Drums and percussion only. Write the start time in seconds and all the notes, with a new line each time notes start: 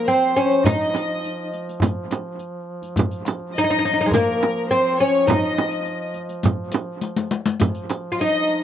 0.07 riq, tombak ka
0.51 riq, tombak ka
0.64 riq, tombak dum, frame drum
0.81 riq
0.94 riq, tombak tek, frame drum
1.07 tombak ka
1.23 riq, tombak ka
1.54 riq
1.69 riq
1.80 riq, tombak dum, frame drum
2.11 riq, tombak tek, frame drum
2.38 riq, tombak ka
2.82 riq, tombak ka
2.96 riq, tombak dum, frame drum
3.11 riq
3.25 riq, tombak tek, frame drum
3.39 tombak ka
3.54 riq, tombak ka
3.84 riq
3.98 riq
4.11 riq, tombak dum, frame drum
4.41 tombak tek, frame drum
4.71 riq, tombak ka
5.14 riq, tombak ka
5.28 riq, tombak dum, frame drum
5.43 tombak ka
5.58 tombak tek, frame drum
5.71 riq
5.85 riq, tombak ka
6.14 riq, tombak ka
6.29 riq
6.43 riq, tombak dum, frame drum
6.72 riq, tombak tek, frame drum
7.01 riq, tombak tek
7.16 riq, tombak ka
7.31 riq, tombak tek
7.46 riq, tombak ka
7.60 riq, tombak dum, frame drum
7.75 riq
7.89 riq, tombak tek, frame drum
8.19 riq, tombak ka
8.48 riq